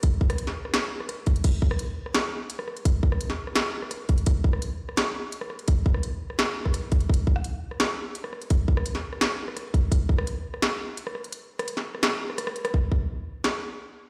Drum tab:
CC |--------------------------------|x-------------------------------|--------------------------------|--------------------------------|
HH |x-----x-x-------x-------x---x-x-|x-------x-------x-------x-----x-|x-------x-------x-------x---x-x-|x-------x-------x-------x-----x-|
SD |------r---o---r-o-----r-r-------|------r-------r-o---------r-r---|------r---o---r-o-----r-r-------|------r-------r-o---------r-r---|
BD |o---o-----------------------o---|o---o---------------------------|o---o-----------------------o---|o---o---------------------------|

CC |--------------------------------|--------------------------------|--------------------------------|--------------------------------|
HH |x-------x-------x-------x---x-x-|-x------x-------x-------x-----x-|x-------x-------x-------x---x---|x-------x-------x-------x-----x-|
SD |------r-------r-o-----r-r-------|------r-------r-o---------r-r---|------r---o---r-o-----r-r-------|------r-------r-o---------r-r---|
BD |o---o-----------------o-----o---|o---o---------------------------|o---o-----------------------o---|o---o---------------------------|

CC |--------------------------------|--------------------------------|
HH |x-----x-x-------x-------x---x-x-|--------------------------------|
SD |------r---o---r-o-----r-r-r---r-|----------------o---------------|
BD |--------------------------------|o---o---------------------------|